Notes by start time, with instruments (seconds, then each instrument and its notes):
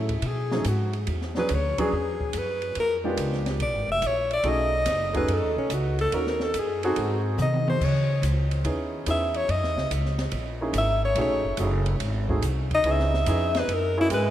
Already playing: upright bass A2, alto saxophone E4
0.09 kick, ride
0.22 upright bass B2, ride
0.27 alto saxophone G#4
0.51 grand piano F#3 A3 C#4 D#4 G#4, snare
0.64 upright bass G#2, alto saxophone F#4, hi-hat pedal, ride
0.93 ride
1.07 upright bass E2, ride
1.21 snare
1.35 grand piano F#3 B3 C#4 D4 G#4, snare
1.39 alto saxophone B4
1.49 upright bass D2, hi-hat pedal, ride
1.55 alto saxophone C#5
1.78 grand piano F#3 B3 C#4 D4 G#4, alto saxophone G#4, kick, ride
1.92 upright bass E2
2.21 kick
2.33 upright bass F#2, hi-hat pedal, ride
2.38 alto saxophone B4
2.62 ride
2.75 upright bass F2, ride
2.80 alto saxophone A#4
3.04 grand piano G#3 B3 D4 F4 G4
3.17 upright bass C#2, hi-hat pedal, ride
3.32 snare
3.46 snare, ride
3.59 upright bass B1, alto saxophone D5, ride
3.73 upright bass G#1
3.88 upright bass F1, alto saxophone E5
4.02 upright bass A#1, hi-hat pedal, ride
4.07 alto saxophone C#5
4.31 alto saxophone D5, ride
4.44 upright bass B1, grand piano A3 C#4 D#4 F#4 G#4, ride
4.49 alto saxophone D#5
4.86 upright bass F#1, snare, hi-hat pedal, ride
5.13 grand piano A3 C#4 D#4 F#4 G#4, alto saxophone B4, kick, ride
5.28 upright bass F#2, ride
5.34 alto saxophone A4
5.42 upright bass D#2
5.55 upright bass B1, alto saxophone C#4
5.70 upright bass C#2, hi-hat pedal, ride
5.74 alto saxophone F#4
5.99 alto saxophone A4, ride
6.12 upright bass D#2, grand piano A#3 C#4 D#4 F#4 A#4, alto saxophone A#4, ride
6.27 snare
6.40 alto saxophone A4, snare
6.54 upright bass F#2, hi-hat pedal, ride
6.60 alto saxophone G#4
6.83 grand piano C4 D#4 F#4 G#4 A4, alto saxophone F#4, ride
6.96 upright bass G#2, ride
7.38 upright bass C3, hi-hat pedal, high tom
7.42 alto saxophone D#5
7.53 high tom
7.68 alto saxophone C5, high tom
7.81 upright bass C#3, alto saxophone C#5, kick, crash
8.22 upright bass C#2, hi-hat pedal, ride
8.51 ride
8.64 upright bass D#2, grand piano B3 C#4 D#4 E4 G#4, ride
9.06 upright bass E2, grand piano B3 C#4 D#4 E4 G#4, hi-hat pedal, ride
9.11 alto saxophone E5
9.34 alto saxophone C#5, ride
9.48 upright bass F#2, alto saxophone D#5, ride
9.62 upright bass E2, snare
9.76 upright bass C#2, snare
9.90 upright bass C#2, hi-hat pedal, ride
10.05 snare
10.19 snare, ride
10.31 upright bass A#1, ride
10.61 grand piano A#3 C#4 D#4 E4 G#4
10.73 upright bass G#1, hi-hat pedal, ride
10.78 alto saxophone E5
11.05 alto saxophone C#5
11.15 upright bass B1, grand piano A3 C#4 D#4 F#4 G#4, ride
11.21 alto saxophone C#5
11.29 upright bass A1
11.43 upright bass F#1
11.57 upright bass F#1, grand piano A3 C#4 D#4 F#4 G#4, hi-hat pedal, ride
11.86 ride
12.00 upright bass G#1, ride
12.29 grand piano A3 C4 D#4 F#4 G#4, kick
12.42 upright bass C2, hi-hat pedal, ride
12.71 alto saxophone D#5, kick, ride
12.84 upright bass C#2, grand piano B3 C#4 D#4 E4 G#4, ride
12.91 alto saxophone E5
12.99 snare
13.14 snare
13.26 upright bass F2, grand piano B3 C#4 D#4 E4 G#4, hi-hat pedal, ride
13.55 snare, ride
13.59 alto saxophone B4
13.68 upright bass F#2, ride
13.74 alto saxophone A#4
13.97 grand piano A#3 C#4 E4 F#4 G#4, alto saxophone E4
14.09 upright bass G#2, baritone saxophone G#3, hi-hat pedal, ride
14.14 alto saxophone B4